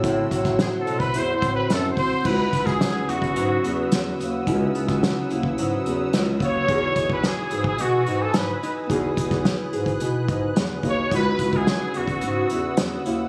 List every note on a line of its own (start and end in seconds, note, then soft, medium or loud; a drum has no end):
0.00 0.26 A2 loud
0.00 2.26 A2 medium
0.00 0.31 A3 medium
0.00 1.93 B3 medium
0.00 1.93 C4 medium
0.00 1.94 E4 medium
0.00 1.95 F#4 medium
0.00 2.21 F#4 medium
0.00 2.23 F#5 medium
0.00 2.23 C6 medium
0.00 2.22 E6 medium
0.00 kick loud
0.04 1.15 E4 medium
0.04 closed hi-hat medium
0.31 0.76 A2 medium
0.31 0.88 F#3 medium
0.31 kick medium
0.31 closed hi-hat medium
0.45 kick loud
0.45 snare soft
0.45 closed hi-hat soft
0.59 1.41 C4 medium
0.59 0.69 G#4 medium
0.59 snare loud
0.59 closed hi-hat medium
0.80 1.00 A4 medium
0.87 1.09 B2 medium
0.87 1.69 F#3 medium
0.87 closed hi-hat medium
0.99 1.19 B4 loud
0.99 kick medium
0.99 closed hi-hat soft
1.14 1.37 E2 medium
1.14 2.25 E4 medium
1.14 1.35 C5 loud
1.14 closed hi-hat loud
1.36 1.52 C5 loud
1.42 1.65 A2 medium
1.42 1.97 C4 medium
1.42 kick loud
1.42 closed hi-hat medium
1.55 1.74 B4 medium
1.70 1.92 F#2 loud
1.70 2.80 F#3 medium
1.70 1.90 A4 medium
1.70 snare loud
1.70 closed hi-hat medium
1.91 1.98 C5 medium
1.97 2.31 C4 medium
1.97 2.27 C5 medium
1.97 kick loud
1.97 open hi-hat soft
2.23 2.47 C#2 loud
2.23 4.46 C#3 medium
2.23 4.42 B3 medium
2.23 4.43 D#4 medium
2.23 3.08 E4 medium
2.23 4.44 E4 medium
2.23 2.67 B4 loud
2.23 13.29 B4 medium
2.23 6.65 F#5 medium
2.23 13.29 D#6 medium
2.23 8.86 E6 medium
2.23 kick loud
2.23 crash medium
2.28 4.44 F#4 medium
2.53 3.11 C#2 medium
2.53 3.64 B3 medium
2.53 kick medium
2.53 closed hi-hat medium
2.66 3.10 G#4 medium
2.66 kick loud
2.66 snare soft
2.66 closed hi-hat soft
2.81 3.35 F#3 medium
2.81 snare loud
2.81 closed hi-hat medium
3.09 3.31 E2 medium
3.09 4.48 E4 medium
3.09 3.92 F#4 medium
3.09 closed hi-hat medium
3.22 kick medium
3.22 closed hi-hat soft
3.36 3.59 G#2 medium
3.36 3.91 F#3 medium
3.36 closed hi-hat medium
3.64 3.86 E2 medium
3.64 4.19 B3 medium
3.64 closed hi-hat medium
3.92 4.14 E2 loud
3.92 5.02 F#3 medium
3.92 snare loud
3.92 closed hi-hat medium
4.20 4.42 D#2 medium
4.20 4.75 B3 medium
4.20 closed hi-hat medium
4.45 4.69 C#2 loud
4.45 6.69 C#3 medium
4.45 6.64 B3 medium
4.45 6.65 D#4 medium
4.45 5.31 E4 medium
4.45 6.66 E4 medium
4.45 kick loud
4.45 closed hi-hat medium
4.50 6.66 F#4 medium
4.75 5.20 C#2 medium
4.75 5.86 B3 medium
4.75 closed hi-hat medium
4.88 kick loud
4.88 snare soft
4.88 closed hi-hat soft
5.03 5.57 F#3 medium
5.03 snare loud
5.03 closed hi-hat medium
5.30 5.52 D#2 medium
5.30 6.95 E4 medium
5.30 closed hi-hat medium
5.43 kick medium
5.58 5.80 G#2 medium
5.58 6.12 F#3 medium
5.58 closed hi-hat medium
5.86 6.08 E2 medium
5.86 6.41 B3 medium
5.86 closed hi-hat medium
6.13 6.36 C#2 loud
6.13 6.68 F#3 medium
6.13 snare loud
6.13 closed hi-hat medium
6.40 6.63 D#2 medium
6.40 7.24 B3 medium
6.40 kick loud
6.40 closed hi-hat medium
6.44 7.08 C#5 loud
6.66 6.91 E2 loud
6.66 8.90 E3 medium
6.66 8.85 B3 medium
6.66 8.86 D#4 medium
6.66 8.87 F#4 medium
6.66 7.52 G#4 medium
6.66 11.07 G#5 medium
6.66 kick loud
6.66 closed hi-hat medium
6.72 8.87 G#4 medium
6.96 7.40 E2 medium
6.96 8.07 D#4 medium
6.96 kick medium
6.96 closed hi-hat medium
7.10 7.28 B4 medium
7.10 kick loud
7.24 7.79 B3 medium
7.24 7.67 G#4 medium
7.24 snare loud
7.24 closed hi-hat medium
7.51 7.80 G#2 medium
7.51 8.90 G#4 medium
7.51 closed hi-hat medium
7.64 7.83 G#4 medium
7.64 kick loud
7.78 8.01 B2 medium
7.78 8.35 B3 medium
7.78 8.24 F#4 medium
7.78 closed hi-hat loud
8.06 8.29 G#2 medium
8.06 8.62 D#4 medium
8.06 closed hi-hat medium
8.22 8.38 A4 medium
8.34 8.56 G#2 medium
8.34 9.45 B3 medium
8.34 8.77 B4 medium
8.34 snare loud
8.34 closed hi-hat loud
8.63 9.17 D#4 medium
8.63 closed hi-hat medium
8.87 9.12 E2 loud
8.87 11.15 E3 medium
8.87 10.78 B3 medium
8.87 10.80 D#4 medium
8.87 10.80 F#4 medium
8.87 9.73 G#4 medium
8.87 11.09 F#6 medium
8.87 kick loud
8.87 closed hi-hat medium
8.92 10.81 G#4 medium
9.17 9.62 E2 medium
9.17 10.28 D#4 medium
9.17 kick medium
9.17 closed hi-hat medium
9.31 kick loud
9.31 snare soft
9.31 closed hi-hat soft
9.45 10.00 B3 medium
9.45 snare loud
9.45 closed hi-hat medium
9.73 9.95 G#2 medium
9.73 11.12 G#4 medium
9.73 closed hi-hat medium
9.86 kick medium
9.86 closed hi-hat soft
10.00 10.23 B2 medium
10.00 10.56 B3 medium
10.00 closed hi-hat medium
10.28 10.51 G#2 medium
10.28 10.83 D#4 medium
10.28 kick loud
10.28 closed hi-hat medium
10.56 10.78 E2 medium
10.56 11.67 B3 medium
10.56 snare loud
10.56 closed hi-hat medium
10.83 11.05 D#2 medium
10.83 11.09 B3 soft
10.83 11.38 D#4 medium
10.83 11.10 D#4 soft
10.83 11.12 F#4 soft
10.83 11.12 G#4 medium
10.83 kick loud
10.83 closed hi-hat medium
10.89 11.12 C#5 loud
11.10 11.33 C#2 loud
11.10 13.29 C#3 medium
11.10 13.28 B3 medium
11.10 13.29 D#4 medium
11.10 13.29 E4 medium
11.10 11.94 F#4 medium
11.10 13.29 F#5 medium
11.10 13.29 E6 medium
11.10 kick loud
11.10 closed hi-hat medium
11.15 13.29 F#4 medium
11.15 11.58 B4 loud
11.39 11.83 C#2 medium
11.39 12.49 E4 medium
11.39 kick medium
11.39 closed hi-hat medium
11.53 kick loud
11.53 closed hi-hat soft
11.57 11.99 G#4 medium
11.67 12.22 B3 medium
11.67 snare loud
11.67 closed hi-hat medium
11.94 12.17 E2 medium
11.94 13.29 F#4 medium
11.94 12.79 F#4 medium
11.94 closed hi-hat medium
12.07 kick medium
12.07 closed hi-hat soft
12.21 12.44 G#2 medium
12.21 12.77 B3 medium
12.21 closed hi-hat medium
12.49 12.72 E2 medium
12.49 13.05 E4 medium
12.49 closed hi-hat medium
12.77 12.99 E2 medium
12.77 13.29 B3 medium
12.77 snare loud
12.77 closed hi-hat loud
13.05 13.27 D#2 medium
13.05 13.29 E4 medium
13.05 closed hi-hat medium